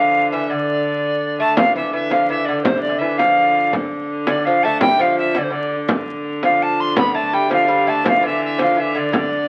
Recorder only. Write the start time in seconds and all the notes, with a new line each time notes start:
Already playing: F5
0.30 E5
0.49 D5
1.40 A5
1.57 F5
1.76 E5
1.93 E5
2.11 F5
2.29 E5
2.45 D5
2.62 C5
2.81 D5
2.98 E5
3.17 F5
4.27 D5
4.45 F5
4.63 A5
4.80 G5
5.01 F5
5.18 E5
5.37 D5
5.42 C5
5.52 D5
6.44 F5
6.62 A5
6.80 C6
6.97 B5
7.14 A5
7.26 A5
7.33 G5
7.52 F5
7.88 A5
8.07 F5
8.25 E5
8.44 E5
8.62 F5
8.79 E5
8.97 D5
9.16 D5